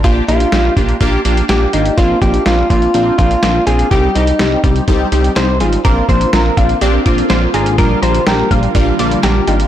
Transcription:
<<
  \new Staff \with { instrumentName = "Synth arpeggio sound" } { \time 4/4 \key bes \mixolydian \tempo 4 = 124 r1 | r1 | r1 | d'''8 c'''8 bes''8 f''8 d''8 d'''8 c'''8 bes''8 |
d'''8 bes''8 g''8 f''8 d''8 d'''8 bes''8 g''8 | }
  \new Staff \with { instrumentName = "Clean electric guitar" } { \time 4/4 \key bes \mixolydian f'8 f'4 r4. g'8 ees'8 | f'8 g'8 f'8 f'4 f'4 aes'8 | g'8 ees'4 r4. c''8 aes'8 | bes'8 c''8 bes'8 r4. c''8 aes'8 |
bes'8 c''8 bes'8 r4. g'8 ees'8 | }
  \new Staff \with { instrumentName = "Analog polysynth" } { \time 4/4 \key bes \mixolydian <bes d' f' g'>8 <bes d' f' g'>8 <bes d' f' g'>8 <bes d' f' g'>8 <bes d' f' g'>8 <bes d' f' g'>8 <bes d' f' g'>8 <bes d' f' g'>8 | <bes c' d' f'>8 <bes c' d' f'>8 <bes c' d' f'>8 <bes c' d' f'>8 <bes c' d' f'>8 <bes c' d' f'>8 <bes c' d' f'>8 <bes c' d' f'>8 | <g c' ees' g'>8 <g c' ees' g'>8 <g c' ees' g'>8 <g c' ees' g'>8 <g c' ees' g'>8 <g c' ees' g'>8 <g c' ees' g'>8 <g c' ees' f'>8 | <bes c' d' f'>8 <bes c' d' f'>8 <bes c' d' f'>8 <bes c' d' f'>8 <bes c' d' g'>8 <bes c' d' f'>8 <bes c' d' f'>8 <bes c' d' f'>8 |
<g bes d' f'>8 <g bes d' f'>8 <g bes d' g'>8 <g bes d' f'>8 <g bes d' f'>8 <g bes d' f'>8 <g bes d' f'>8 <g bes d' f'>8 | }
  \new Staff \with { instrumentName = "String machine" } { \time 4/4 \key bes \mixolydian << { r1 | r1 | r1 | <d f'>1~ |
<d f'>1 | } \\ { r1 | r1 | r1 | <bes c'>1 |
g1 | } >> }
  \new Staff \with { instrumentName = "Analog synth bass" } { \clef bass \time 4/4 \key bes \mixolydian bes,,8 bes,,8 bes,,8 bes,,8 bes,,8 bes,,8 bes,,8 aes,,8 | bes,,8 bes,,8 bes,,8 bes,,8 bes,,8 bes,,8 bes,,8 bes,,8 | c,8 c,8 c,8 c,8 c,8 c,8 c,8 aes,,8 | bes,,8 bes,,8 bes,,8 bes,,8 bes,,8 bes,,8 bes,,8 aes,,8 |
bes,,8 bes,,8 bes,,8 bes,,8 bes,,8 bes,,8 bes,,8 aes,,8 | }
  \new DrumStaff \with { instrumentName = "Drums" } \drummode { \time 4/4 <hh bd>8 hh16 hh16 <hh sn>8 <hh bd>16 hh16 <hh bd>8 hh16 hh16 <hh sn>8 hh16 hh16 | <hh bd>8 <hh bd>16 hh16 <hh sn>8 <hh bd>16 hh16 hh8 <hh bd>16 hh16 <hh sn>8 hh16 hh16 | <hh bd>8 hh16 hh16 <hh sn>8 <hh bd>16 hh16 <hh bd>8 hh16 hh16 <hh sn>8 hh16 hh16 | <hh bd>8 <hh bd>16 hh16 <hh sn>8 <hh bd>16 hh16 hh8 <hh bd>16 hh16 <hh sn>8 hh16 hh16 |
<hh bd>8 hh16 hh16 <hh sn>8 <hh bd>16 hh16 <hh bd>8 hh16 hh16 <hh sn>8 hh16 hh16 | }
>>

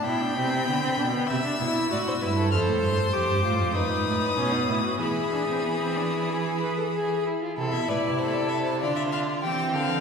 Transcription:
<<
  \new Staff \with { instrumentName = "Violin" } { \time 4/4 \key a \minor \tempo 4 = 97 b''2 e'''2 | f'''8 c'''8 d'''4 dis'''2 | b''2.~ b''8 r8 | r16 e''16 d''8 c''16 d''16 e''16 c''16 d''16 e''16 f''8 g''8 f''8 | }
  \new Staff \with { instrumentName = "Violin" } { \time 4/4 \key a \minor g''2 e''4 d''16 c''16 b'16 a'16 | c''2 b'2 | gis'2.~ gis'8 r8 | a'8 b'8 a'4 f'4 g'8 a'8 | }
  \new Staff \with { instrumentName = "Viola" } { \time 4/4 \key a \minor e'16 d'16 c'8 b16 c'16 d'16 b16 c'16 d'16 e'8 fis'8 e'8 | a'4 g'8 f'8 dis'4 cis'16 dis'16 e'16 fis'16 | e'8 d'16 c'16 b16 c'16 d'16 e'16 gis'8 b'16 a'16 gis'8 e'16 f'16 | e'2 d'8 d'8 c'4 | }
  \new Staff \with { instrumentName = "Cello" } { \clef bass \time 4/4 \key a \minor b,8 c8 d8 b,8 c8 b,8 a,8 g,8 | f,16 a,16 g,8 f,16 g,16 a,16 f,16 fis,16 gis,16 a,8 b,8 a,8 | e2.~ e8 r8 | c16 b,16 a,16 c4~ c16 d4 e8 d8 | }
>>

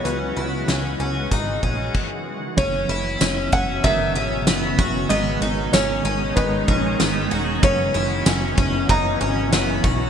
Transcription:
<<
  \new Staff \with { instrumentName = "Felt piano" } { \time 4/4 \key fis \mixolydian \tempo 4 = 95 b'2 r2 | cis''4 r8 fis''8 e''2 | dis''4 cis''4 b'4. r8 | cis''2 ais''2 | }
  \new Staff \with { instrumentName = "Twelve-string acoustic guitar" } { \time 4/4 \key fis \mixolydian cis'8 e'8 cis'8 cis'8 dis'8 cis'8 r4 | cis'8 e'8 cis'8 cis'8 dis8 cis'8 b8 fis'8 | b8 dis'8 cis'8 cis'8 dis'8 cis'8 b8 fis'8 | cis'8 e'8 cis'8 cis'8 dis'8 cis'8 b8 fis'8 | }
  \new Staff \with { instrumentName = "Clean electric guitar" } { \time 4/4 \key fis \mixolydian r1 | <fis, cis e b e'>8 <e b e'>8 <fis, cis e b e'>8 <e e'>8 <cis e b>8 <e b e'>8 <fis, cis e b e'>8 <e b e'>8 | <gis, dis gis b dis' ais'>8 <gis b dis' ais'>8 <gis, dis gis b dis' ais'>8 <gis b dis' ais'>8 <gis b dis'>8 <gis b dis'>8 <gis, dis gis b dis'>8 <gis b dis' ais'>8 | <fis, cis e b e' fis'>8 <e b e' fis'>8 <fis, cis e b e' fis'>8 <e b e' fis'>8 <e b e' fis'>8 <e b e' fis'>8 <fis, cis e b e' fis'>8 <e b e' fis'>8 | }
  \new Staff \with { instrumentName = "Ambient pad" } { \clef bass \time 4/4 \key fis \mixolydian << { <cis e gis fis'>2 r2 | <b, cis fis e''>1 | <dis gis dis'>1 | <b, cis e fis>1 | } \\ { b2. r4 | cis'1~ | cis'1~ | cis'1 | } >> }
  \new Staff \with { instrumentName = "Analog synth bass" } { \clef bass \time 4/4 \key fis \mixolydian cis,8 cis,8 cis,8 cis,8 gis,,8 ais,,8 r4 | fis,,8 fis,,8 fis,,8 fis,,8 fis,,8 gis,,8 fis,,8 fis,,8 | gis,,8 gis,,8 gis,,8 gis,,8 gis,,8 ais,,8 gis,,8 e,,8 | fis,,8 fis,,8 fis,,8 fis,,8 fis,,8 gis,,8 fis,,8 b,,8 | }
  \new DrumStaff \with { instrumentName = "Drums" } \drummode { \time 4/4 hh4 <hh sn>4 <hh bd>8 bd8 <cymc bd>4 | <bd cymr>8 cymr8 <cymr sn tamb>8 <bd cymr>8 <bd cymr>8 cymr8 <cymr sn tamb>8 <bd cymr>8 | cymr8 cymr8 <cymr sn tamb>8 cymr8 <bd cymr>8 <bd cymr>8 <cymr sn tamb>8 cymr8 | <bd cymr>8 cymr8 <cymr sn tamb>8 <bd cymr>8 <bd cymr>8 cymr8 <cymr sn tamb>8 <bd cymr>8 | }
>>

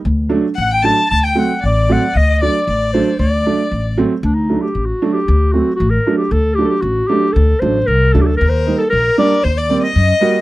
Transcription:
<<
  \new Staff \with { instrumentName = "Violin" } { \time 2/4 \tempo 4 = 115 r4 fis''16 g''16 a''8 | a''16 g''8. d''4 | ees''8 d''8 d''4 | d''4. r8 |
r2 | r2 | r2 | r2 |
bes'8. a'16 bes'4 | c''16 d''8 ees''4~ ees''16 | }
  \new Staff \with { instrumentName = "Clarinet" } { \time 2/4 r4 fis''16 g''16 a''8 | a''16 g''16 fis''8 d''8 fis''8 | ees''8 d''4 c''8 | d''4. r8 |
d'16 ees'8 g'8 fis'8 g'16~ | g'8 fis'8 fis'16 bes'8 g'16 | a'8 g'32 a'32 g'16 fis'8 g'8 | a'8 c''8 bes'8 a'32 g'32 a'16 |
bes'16 c''8 a'16 bes'8 d''8 | c''16 d''8 ees''4~ ees''16 | }
  \new Staff \with { instrumentName = "Upright piano" } { \time 2/4 r8 <fis a d'>16 r8. <fis a d'>16 r16 | r8 <fis a c'>16 r8. <fis a c'>16 r16 | r8 <fis a d'>16 r8. <fis a d'>16 r16 | r8 <fis a d'>16 r8. <fis a c'>16 r16 |
r8 <fis a d'>16 r8. <fis a d'>16 r16 | r8 <fis a c'>16 r8. <fis a d'>16 r16 | r8 <fis a d'>16 r8. <fis a d'>16 r16 | r8 <fis a d'>16 r8. <fis a d'>16 r16 |
r8 <g bes ees'>16 r8. <g bes d'>16 r16 | r8 <g bes c'>16 r8. <g bes fis'>16 r16 | }
  \new Staff \with { instrumentName = "Upright bass" } { \clef bass \time 2/4 d,4 a,,4 | d,4 a,,4 | d,4 a,,4 | d,4 a,,4 |
d,4 a,,8 r8 | d,4 a,,8 r8 | d,4 a,,8 r8 | d,8 a,,8 c,8 d,8 |
ees,4 bes,,8 r8 | ees,4 fis,8 r8 | }
>>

